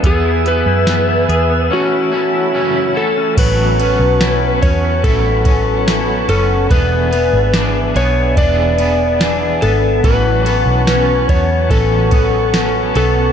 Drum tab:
CC |--------|x-------|--------|--------|
RD |--------|xxxxxxxx|xxxxxxxx|xxxxxxxx|
HH |xxxx----|--------|--------|--------|
TB |--x-----|--x---x-|--x---x-|--x---x-|
SD |--o-----|--o---o-|--o---o-|--o---o-|
BD |o-------|o--ooo--|o---o---|o--ooo--|